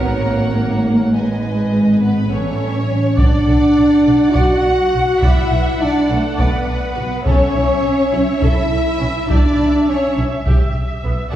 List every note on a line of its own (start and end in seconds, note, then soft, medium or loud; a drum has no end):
0.00 2.27 G#1 medium
0.00 0.26 B3 medium
0.00 1.11 F#4 medium
0.00 1.10 A#4 medium
0.00 1.10 C#5 medium
0.00 1.11 F#5 medium
0.27 1.14 A#3 medium
1.14 2.00 G#3 medium
1.14 1.83 G#4 soft
1.14 2.27 B4 soft
1.14 1.83 B4 soft
1.14 1.98 D#5 soft
1.14 1.98 G#5 soft
2.00 2.28 B3 medium
2.00 2.29 B3 soft
2.00 2.29 B4 soft
2.30 2.98 A1 soft
2.30 2.89 G3 soft
2.30 3.18 C#4 medium
2.30 3.18 C#4 soft
2.30 2.84 A4 soft
2.30 2.94 A4 soft
2.30 2.84 C#5 soft
2.30 3.18 C#5 soft
2.30 3.19 C#5 soft
2.30 2.94 E5 soft
3.17 3.26 B1 medium
3.17 4.32 D4 medium
3.17 3.45 D5 soft
3.17 4.35 D5 medium
3.17 7.21 F#5 soft
3.17 taiko medium
3.46 3.56 B1 soft
3.46 3.54 A4 soft
4.05 4.14 B1 soft
4.05 4.13 A4 soft
4.34 4.43 B1 medium
4.34 5.20 F#4 medium
4.34 5.22 F#4 medium
4.34 4.61 D5 medium
4.34 5.22 F#5 medium
4.34 taiko medium
4.93 5.02 B1 soft
4.93 5.01 F#4 soft
5.22 5.31 B1 medium
5.22 5.80 E4 medium
5.22 5.49 D5 soft
5.22 5.79 E5 medium
5.22 5.80 E5 medium
5.22 taiko medium
5.51 5.59 B1 soft
5.51 5.60 B4 soft
5.80 6.10 D4 medium
5.80 6.09 D5 medium
6.10 6.18 B1 soft
6.10 6.39 A3 soft
6.10 6.39 A3 medium
6.10 6.39 A4 soft
6.10 6.39 A4 medium
6.10 6.18 B4 soft
6.38 6.47 B1 medium
6.38 7.24 B3 soft
6.38 7.27 B3 medium
6.38 7.26 B4 medium
6.38 7.25 B4 soft
6.38 6.65 D5 medium
6.38 taiko medium
6.96 7.05 B1 soft
6.96 7.04 F#4 soft
7.25 7.34 B1 medium
7.25 8.43 C#4 medium
7.25 8.26 C#4 medium
7.25 7.53 A4 medium
7.25 8.40 C#5 medium
7.25 11.30 E5 soft
7.25 taiko medium
7.54 7.63 B1 soft
7.54 7.62 E4 soft
8.13 8.21 B1 soft
8.13 8.21 E4 soft
8.42 8.50 B1 medium
8.42 9.30 E4 medium
8.42 9.28 E4 medium
8.42 8.69 A4 medium
8.42 9.30 E5 medium
8.42 taiko medium
9.00 9.08 B1 soft
9.00 9.08 C#4 medium
9.28 9.38 B1 medium
9.28 9.88 D4 medium
9.28 9.87 D4 medium
9.28 9.56 G4 medium
9.28 9.88 D5 medium
9.28 9.87 D5 medium
9.28 taiko medium
9.58 9.67 B1 soft
9.58 9.66 E4 soft
9.87 10.17 C#4 medium
9.87 10.17 C#5 medium
10.17 10.25 B1 soft
10.17 10.25 E4 soft
10.46 10.54 B1 medium
10.46 10.73 G4 medium
10.46 taiko medium
11.04 11.13 B1 soft
11.04 11.12 B3 medium
11.32 11.36 F#5 medium